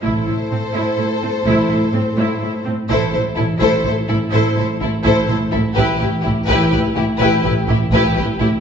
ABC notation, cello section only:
X:1
M:3/4
L:1/8
Q:1/4=126
K:Am
V:1 name="Cello section" clef=bass
A,, A,, A,, A,, A,, A,, | A,, A,, A,, A,, A,, A,, | A,, A,, A,, A,, A,, A,, | A,, A,, A,, A,, A,, A,, |
A,, A,, A,, A,, A,, A,, | A,, A,, A,, A,, A,, A,, |]